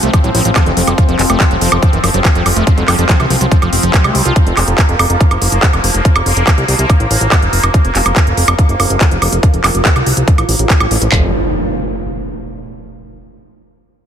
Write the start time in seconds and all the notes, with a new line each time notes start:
Already playing: F3 C4
0.03 C2 A3, closed hi-hat
0.14 F3, kick, closed hi-hat, high woodblock
0.24 A1 F#3, closed hi-hat
0.35 A1 F3, open hi-hat
0.45 A1 F3, closed hi-hat
0.56 F3, kick, clap, closed hi-hat, high woodblock
0.66 F1 E3, closed hi-hat
0.77 F1 F3, open hi-hat
0.87 F1 F#3, closed hi-hat, high woodblock
0.98 F3, kick, closed hi-hat
1.09 F1 F3, closed hi-hat
1.19 F1 F3, clap, open hi-hat
1.30 F1 A3, closed hi-hat, high woodblock
1.40 F3, kick, clap, closed hi-hat
1.51 F1 F#3, closed hi-hat
1.61 F1 F3, open hi-hat
1.72 F1 F3, closed hi-hat, high woodblock
1.83 F3, kick, closed hi-hat
1.93 F#1 E3, closed hi-hat
2.04 F#1 F3, open hi-hat, high woodblock
2.14 F#1 F#3, closed hi-hat
2.25 F3, kick, clap, closed hi-hat
2.35 F1 F3, closed hi-hat
2.46 F1 F3, open hi-hat, high woodblock
2.56 F1 A3, closed hi-hat
2.67 F3, kick, closed hi-hat
2.78 F1 F#3, closed hi-hat
2.88 F1 F3, clap, open hi-hat, high woodblock
2.99 F1 F3, closed hi-hat
3.09 F3, kick, clap, closed hi-hat
3.20 C2 E3, closed hi-hat, high woodblock
3.30 C2 F3, open hi-hat
3.41 C2 F#3, closed hi-hat
3.52 F3, kick, closed hi-hat
3.62 F1 F3, closed hi-hat, high woodblock
3.73 F1 C4, open hi-hat
3.83 F1 F3, closed hi-hat
3.94 F#3, kick, clap, closed hi-hat
4.04 C2 A3, closed hi-hat, high woodblock
4.15 C2 F#3, open hi-hat
4.25 C2 F4, closed hi-hat
4.36 A#3, kick, closed hi-hat
4.47 F1, closed hi-hat
4.57 F1, clap, open hi-hat, high woodblock
4.68 F1, closed hi-hat
4.78 kick, clap, closed hi-hat
4.89 F1, closed hi-hat
4.99 F1, open hi-hat, high woodblock
5.10 F1, closed hi-hat
5.21 kick, closed hi-hat
5.31 F#1, closed hi-hat, high woodblock
5.42 F#1, open hi-hat
5.52 F#1, closed hi-hat
5.63 kick, clap, closed hi-hat
5.73 F1, closed hi-hat, high woodblock
5.84 F1, open hi-hat
5.94 F1, closed hi-hat
6.05 kick, closed hi-hat
6.16 F1, closed hi-hat, high woodblock
6.26 F1, open hi-hat
6.37 F1, closed hi-hat
6.47 kick, clap, closed hi-hat, high woodblock
6.58 C2, closed hi-hat
6.68 C2, open hi-hat
6.79 C2, closed hi-hat
6.90 kick, closed hi-hat, high woodblock
7.00 A1, closed hi-hat
7.11 A1, open hi-hat
7.21 A1, closed hi-hat
7.32 kick, clap, closed hi-hat, high woodblock
7.42 F1, closed hi-hat
7.53 F1, open hi-hat
7.64 F1, closed hi-hat, high woodblock
7.74 kick, closed hi-hat
7.85 F1, closed hi-hat
7.95 F1, clap, open hi-hat
8.06 F1, closed hi-hat, high woodblock
8.16 kick, clap, closed hi-hat
8.27 F1, closed hi-hat
8.37 F1, open hi-hat
8.48 F1, closed hi-hat, high woodblock
8.59 kick, closed hi-hat
8.69 F#1, closed hi-hat
8.80 F#1, open hi-hat, high woodblock
8.90 F#1, closed hi-hat
9.01 kick, clap, closed hi-hat
9.11 F1, closed hi-hat
9.22 F1, open hi-hat, high woodblock
9.33 F1, closed hi-hat
9.43 kick, closed hi-hat
9.54 F1, closed hi-hat
9.64 F1, clap, open hi-hat, high woodblock
9.75 F1, closed hi-hat
9.85 kick, clap, closed hi-hat
9.96 C2, closed hi-hat, high woodblock
10.06 C2, open hi-hat
10.17 C2, closed hi-hat
10.28 kick, closed hi-hat
10.38 A1, closed hi-hat, high woodblock
10.49 A1, open hi-hat
10.59 A1, closed hi-hat
10.70 kick, clap, closed hi-hat
10.80 A1, closed hi-hat, high woodblock
10.91 A1, open hi-hat
11.02 A1, closed hi-hat
11.12 F1 F3, kick, clap, impact